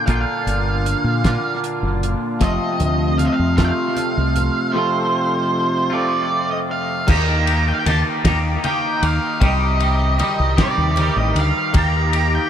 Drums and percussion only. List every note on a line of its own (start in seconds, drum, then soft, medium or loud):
0.07 kick loud
0.07 closed hi-hat medium
0.47 closed hi-hat medium
0.86 closed hi-hat medium
1.24 kick medium
1.24 snare loud
1.24 closed hi-hat medium
1.64 closed hi-hat medium
2.03 closed hi-hat medium
2.41 kick medium
2.41 closed hi-hat medium
2.41 high conga medium
2.80 closed hi-hat medium
2.80 low conga medium
3.19 closed hi-hat medium
3.19 high conga medium
3.58 kick medium
3.58 snare loud
3.58 closed hi-hat medium
3.58 low conga medium
3.97 closed hi-hat medium
3.97 high conga medium
4.36 closed hi-hat medium
4.36 low conga medium
7.08 kick loud
7.08 crash loud
7.08 high conga loud
7.08 low conga loud
7.47 ride medium
7.68 low conga soft
7.86 ride medium
7.86 high conga loud
7.86 low conga soft
8.25 kick medium
8.25 snare loud
8.25 ride medium
8.25 low conga loud
8.64 ride medium
8.64 high conga medium
8.64 low conga soft
9.03 ride medium
9.23 low conga soft
9.41 kick loud
9.41 ride medium
9.41 high conga loud
9.41 low conga loud
9.80 ride medium
9.80 low conga soft
10.00 low conga soft
10.19 ride medium
10.19 high conga medium
10.19 low conga soft
10.58 kick medium
10.58 snare loud
10.58 ride medium
10.58 low conga loud
10.96 ride medium
10.96 high conga medium
10.96 low conga soft
11.36 ride medium
11.55 low conga soft
11.74 kick loud
11.74 ride medium
11.74 high conga loud
11.74 low conga loud
12.13 ride medium
12.34 low conga soft